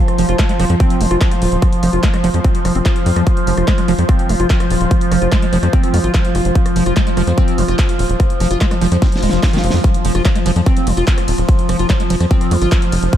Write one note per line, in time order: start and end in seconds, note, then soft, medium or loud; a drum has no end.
0.00 9.83 F3 medium
0.00 13.17 F4 medium
0.00 13.17 C5 medium
0.00 13.17 C6 medium
0.08 cross-stick medium
0.08 closed hi-hat medium
0.18 0.24 F1 medium
0.18 0.26 F3 medium
0.18 open hi-hat loud
0.29 0.35 F1 medium
0.29 0.37 F4 medium
0.29 cross-stick soft
0.29 closed hi-hat medium
0.39 0.44 G#3 loud
0.39 kick loud
0.39 clap loud
0.39 closed hi-hat medium
0.49 0.52 G#3 medium
0.49 closed hi-hat medium
0.60 0.65 F1 loud
0.60 0.65 F3 loud
0.60 cross-stick medium
0.60 open hi-hat loud
0.70 0.76 F2 medium
0.70 0.75 F3 medium
0.70 closed hi-hat medium
0.80 1.02 C4 medium
0.80 kick loud
0.80 cross-stick soft
0.80 closed hi-hat medium
0.90 closed hi-hat medium
1.01 1.06 F1 loud
1.01 1.06 F#3 medium
1.01 open hi-hat loud
1.11 1.17 F1 medium
1.11 1.19 F4 medium
1.11 cross-stick medium
1.11 closed hi-hat medium
1.21 kick loud
1.21 clap loud
1.21 closed hi-hat medium
1.31 cross-stick soft
1.31 closed hi-hat medium
1.42 1.48 D#1 medium
1.42 open hi-hat loud
1.52 1.58 D#1 medium
1.52 closed hi-hat medium
1.62 kick loud
1.62 cross-stick medium
1.62 closed hi-hat medium
1.73 closed hi-hat medium
1.83 1.89 F1 loud
1.83 1.91 F3 medium
1.83 cross-stick soft
1.83 open hi-hat loud
1.93 1.99 F1 medium
1.93 2.01 F4 medium
1.93 closed hi-hat medium
2.03 2.09 G#3 loud
2.03 kick loud
2.03 clap loud
2.03 closed hi-hat medium
2.14 2.17 G#3 medium
2.14 cross-stick medium
2.14 closed hi-hat medium
2.24 2.30 F1 loud
2.24 2.29 F3 loud
2.24 open hi-hat loud
2.34 2.40 F2 medium
2.34 2.39 F3 medium
2.34 cross-stick soft
2.34 closed hi-hat medium
2.44 2.50 C4 medium
2.44 kick loud
2.44 closed hi-hat medium
2.55 closed hi-hat medium
2.65 2.71 F1 medium
2.65 2.73 F3 medium
2.65 cross-stick medium
2.65 open hi-hat loud
2.75 2.81 F1 medium
2.75 2.78 C4 medium
2.75 closed hi-hat medium
2.86 kick loud
2.86 cross-stick soft
2.86 clap loud
2.86 closed hi-hat medium
2.96 closed hi-hat medium
3.06 3.12 F2 loud
3.06 open hi-hat loud
3.16 3.22 F2 medium
3.16 3.24 F3 loud
3.16 cross-stick medium
3.16 closed hi-hat medium
3.27 kick loud
3.27 cross-stick soft
3.27 closed hi-hat medium
3.37 closed hi-hat medium
3.47 3.53 F1 loud
3.47 3.55 F3 medium
3.47 open hi-hat loud
3.57 3.63 F1 medium
3.57 3.65 F4 medium
3.57 cross-stick medium
3.57 closed hi-hat medium
3.68 3.73 G#3 loud
3.68 kick loud
3.68 clap loud
3.68 closed hi-hat medium
3.78 3.81 G#3 medium
3.78 cross-stick soft
3.78 closed hi-hat medium
3.88 3.94 F1 loud
3.88 3.94 F3 loud
3.88 open hi-hat loud
3.99 4.04 F2 medium
3.99 4.04 F3 medium
3.99 closed hi-hat medium
4.09 4.31 C4 medium
4.09 kick loud
4.09 cross-stick medium
4.09 closed hi-hat medium
4.19 closed hi-hat medium
4.29 4.35 F1 medium
4.29 4.35 F#3 medium
4.29 cross-stick soft
4.29 open hi-hat loud
4.40 4.46 F1 medium
4.40 4.48 F4 medium
4.40 closed hi-hat medium
4.50 kick loud
4.50 clap loud
4.50 closed hi-hat medium
4.60 cross-stick medium
4.60 closed hi-hat medium
4.70 4.76 D#1 loud
4.70 open hi-hat loud
4.81 4.87 D#1 medium
4.81 cross-stick soft
4.81 closed hi-hat medium
4.91 kick loud
4.91 closed hi-hat medium
5.01 closed hi-hat medium
5.12 5.17 F1 medium
5.12 5.19 F3 medium
5.12 cross-stick medium
5.12 open hi-hat loud
5.22 5.28 F1 medium
5.22 5.30 F4 medium
5.22 closed hi-hat medium
5.32 5.37 G#3 loud
5.32 kick loud
5.32 cross-stick soft
5.32 clap loud
5.32 closed hi-hat medium
5.42 5.46 G#3 medium
5.42 closed hi-hat medium
5.53 5.59 F1 loud
5.53 5.58 F3 loud
5.53 open hi-hat loud
5.63 5.69 F2 medium
5.63 5.68 F3 medium
5.63 cross-stick medium
5.63 closed hi-hat medium
5.73 5.95 C4 medium
5.73 kick loud
5.73 closed hi-hat medium
5.83 cross-stick soft
5.83 closed hi-hat medium
5.94 6.00 F2 medium
5.94 5.99 F#3 medium
5.94 open hi-hat loud
6.04 6.10 G#1 medium
6.04 6.12 F4 medium
6.04 closed hi-hat medium
6.14 kick loud
6.14 cross-stick medium
6.14 clap loud
6.14 closed hi-hat medium
6.25 closed hi-hat medium
6.35 6.41 F1 loud
6.35 cross-stick soft
6.35 open hi-hat loud
6.45 6.51 F1 medium
6.45 closed hi-hat medium
6.55 kick loud
6.55 closed hi-hat medium
6.66 cross-stick medium
6.66 closed hi-hat medium
6.76 6.82 F1 loud
6.76 6.84 F3 medium
6.76 open hi-hat loud
6.86 6.92 F1 medium
6.86 6.94 F4 medium
6.86 cross-stick soft
6.86 closed hi-hat medium
6.97 7.02 G#3 loud
6.97 kick loud
6.97 clap loud
6.97 closed hi-hat medium
7.07 7.10 G#3 medium
7.07 closed hi-hat medium
7.17 7.23 F1 medium
7.17 7.22 F3 loud
7.17 cross-stick medium
7.17 open hi-hat medium
7.27 7.33 F2 medium
7.27 7.33 F3 medium
7.27 closed hi-hat medium
7.38 7.60 C4 medium
7.38 kick loud
7.38 cross-stick soft
7.38 closed hi-hat medium
7.48 closed hi-hat medium
7.58 7.64 F1 medium
7.58 7.63 F#3 medium
7.58 open hi-hat loud
7.68 7.74 F1 medium
7.68 7.76 F4 medium
7.68 cross-stick medium
7.68 closed hi-hat medium
7.79 kick loud
7.79 clap loud
7.79 closed hi-hat medium
7.89 cross-stick soft
7.89 closed hi-hat medium
7.99 8.05 D#1 medium
7.99 open hi-hat loud
8.10 8.15 D#1 medium
8.10 closed hi-hat medium
8.20 kick loud
8.20 cross-stick medium
8.20 closed hi-hat medium
8.30 closed hi-hat medium
8.40 8.46 F1 loud
8.40 8.48 F3 medium
8.40 cross-stick soft
8.40 open hi-hat loud
8.51 8.57 F1 medium
8.51 8.59 F4 medium
8.51 closed hi-hat medium
8.61 8.66 G#3 loud
8.61 kick loud
8.61 clap loud
8.61 closed hi-hat medium
8.71 8.74 G#3 medium
8.71 cross-stick medium
8.71 closed hi-hat medium
8.81 8.87 F1 loud
8.81 8.87 F3 loud
8.81 open hi-hat loud
8.92 8.98 F2 medium
8.92 8.97 F3 medium
8.92 cross-stick soft
8.92 closed hi-hat medium
9.02 9.07 C4 medium
9.02 kick loud
9.02 snare medium
9.02 closed hi-hat medium
9.02 swell medium
9.12 snare medium
9.12 closed hi-hat medium
9.23 9.28 D#1 medium
9.23 9.30 G#3 medium
9.23 open hi-hat loud
9.29 9.39 F1 medium
9.29 9.41 F3 medium
9.29 snare medium
9.29 closed hi-hat medium
9.43 kick loud
9.43 snare medium
9.43 clap loud
9.43 closed hi-hat medium
9.53 9.59 D#3 loud
9.53 snare loud
9.53 closed hi-hat medium
9.64 9.69 F1 loud
9.64 open hi-hat loud
9.70 9.80 F2 medium
9.70 snare loud
9.70 open hi-hat medium
9.84 13.17 F3 medium
9.84 kick loud
9.84 cross-stick soft
9.84 closed hi-hat medium
9.94 closed hi-hat medium
10.05 10.11 F1 loud
10.05 10.13 F3 medium
10.05 open hi-hat loud
10.05 ride medium
10.15 10.21 F1 medium
10.15 10.23 F4 medium
10.15 cross-stick medium
10.15 closed hi-hat medium
10.25 10.28 F#3 loud
10.25 kick loud
10.25 clap loud
10.25 closed hi-hat medium
10.36 10.39 G#3 medium
10.36 cross-stick soft
10.36 closed hi-hat medium
10.46 10.52 F1 loud
10.46 10.51 F3 loud
10.46 open hi-hat loud
10.46 ride medium
10.56 10.62 F2 medium
10.56 10.61 F3 medium
10.56 closed hi-hat medium
10.66 10.88 C4 medium
10.66 kick loud
10.66 cross-stick medium
10.66 closed hi-hat medium
10.77 closed hi-hat medium
10.87 10.93 F1 loud
10.87 10.92 F#3 medium
10.87 cross-stick soft
10.87 open hi-hat loud
10.87 ride medium
10.97 11.03 F1 medium
10.97 11.05 F4 medium
10.97 closed hi-hat medium
11.07 kick loud
11.07 clap loud
11.07 closed hi-hat medium
11.18 cross-stick medium
11.18 closed hi-hat medium
11.28 11.34 D#1 loud
11.28 open hi-hat loud
11.28 ride medium
11.38 11.44 D#1 medium
11.38 cross-stick soft
11.38 closed hi-hat medium
11.49 kick loud
11.49 closed hi-hat medium
11.59 closed hi-hat medium
11.69 11.75 F1 loud
11.69 11.77 F3 medium
11.69 cross-stick medium
11.69 open hi-hat loud
11.69 ride medium
11.79 11.85 F1 medium
11.79 11.87 F4 medium
11.79 closed hi-hat medium
11.90 11.93 F#3 loud
11.90 kick loud
11.90 cross-stick soft
11.90 clap loud
11.90 closed hi-hat medium
12.00 12.03 G#3 medium
12.00 closed hi-hat medium
12.10 12.16 F1 loud
12.10 12.15 F3 loud
12.10 open hi-hat loud
12.10 ride medium
12.20 12.26 F2 medium
12.20 12.26 F3 medium
12.20 cross-stick medium
12.20 closed hi-hat medium
12.31 12.53 C4 medium
12.31 kick loud
12.31 closed hi-hat medium
12.41 cross-stick soft
12.41 closed hi-hat medium
12.51 12.57 F2 loud
12.51 12.57 F#3 medium
12.51 open hi-hat loud
12.51 ride medium
12.62 12.67 G#1 medium
12.62 12.69 F4 medium
12.62 closed hi-hat medium
12.72 kick loud
12.72 cross-stick medium
12.72 clap loud
12.72 closed hi-hat medium
12.82 closed hi-hat medium
12.92 12.98 F1 loud
12.92 cross-stick soft
12.92 open hi-hat loud
12.92 ride medium
13.03 13.09 F1 medium
13.03 closed hi-hat medium
13.13 kick loud
13.13 closed hi-hat medium